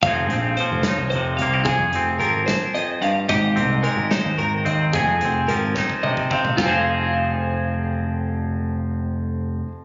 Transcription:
<<
  \new Staff \with { instrumentName = "Clean electric guitar" } { \time 6/8 \key f \minor \tempo 4. = 73 f''4 c''8 des''8 c''8 f''8 | aes'4 bes'8 c''8 ees''8 f''8 | ees''4 bes'8 c''8 bes'8 ees''8 | aes'4 bes'8 c''8 ees''8 f''8 |
<f' aes' c'' f''>2.~ | <f' aes' c'' f''>2. | }
  \new Staff \with { instrumentName = "Clean electric guitar" } { \time 6/8 \key f \minor << { <f c' ees' aes'>8 c'4 ees'4 bes16 c'16 | aes'8 c'2~ c'8 | g'8 c'4 ees'4 c'8 | aes'8 c'4 ees'4 c'8 |
<f c' ees' aes'>2.~ | <f c' ees' aes'>2. | } \\ { f,4 f4 c4 | f,4 f4 f,8 g,8 | aes,4 aes4 ees4 | f,4 f4 c4 |
f,2.~ | f,2. | } >> }
  \new Staff \with { instrumentName = "Picked electric bass" } { \clef bass \time 6/8 \key f \minor f,,8 bes,,8 r16 f,,16 r16 c,16 f,,8 c,8~ | c,16 f,16 f,,8 aes,,8 r4. | aes,,8 c,8 r16 aes,,16 r16 ees,16 aes,,8 ees,8 | f,,16 f,16 f,,8 aes,,8 r4. |
f,,2.~ | f,,2. | }
  \new DrumStaff \with { instrumentName = "Drums" } \drummode { \time 6/8 <hh bd>8 hh8 hh8 <hh sn>8 hh8 hh8 | <hh bd>8 hh8 hh8 <hh bd sn>8 hh8 hh8 | <hh bd>8 hh8 hh8 <hh sn>8 hh8 hh8 | <hh bd>8 hh8 hh8 <bd sn>16 bd16 toml16 bd16 bd16 tomfh16 |
<bd sn>4. r4. | r4. r4. | }
>>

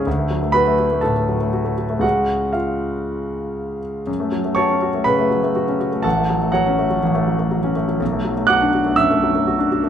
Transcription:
<<
  \new Staff \with { instrumentName = "Grand piano" } { \time 4/4 \key fis \minor \tempo 4 = 122 r4 <b' b''>4 <a' a''>2 | <fis' fis''>4 <eis' eis''>2~ <eis' eis''>8 r8 | r4 <cis'' a'' cis'''>4 <b' b''>2 | <a' fis'' a''>4 <fis' cis'' fis''>2~ <fis' cis'' fis''>8 r8 |
r4 <fis'' d''' fis'''>4 <e'' e'''>2 | }
  \new Staff \with { instrumentName = "Grand piano" } { \time 4/4 \key fis \minor d,16 a16 fis16 a16 fis'16 a16 fis'16 a16 a,16 a16 fis16 a16 fis'16 a16 fis'16 a16 | <cis, gis cis'>1 | fis,16 a16 fis16 a16 fis'16 cis'16 fis'16 a16 cis16 a16 fis16 a16 fis'16 cis'16 fis'16 a16 | a,,16 a16 fis16 a16 fis16 cis'16 a16 fis16 a,,16 a16 fis16 a16 fis16 cis'16 a16 fis16 |
b,,16 a16 fis16 a16 fis'16 d'16 fis'16 a16 fis,16 a16 fis16 a16 fis'16 d'16 fis'16 a16 | }
>>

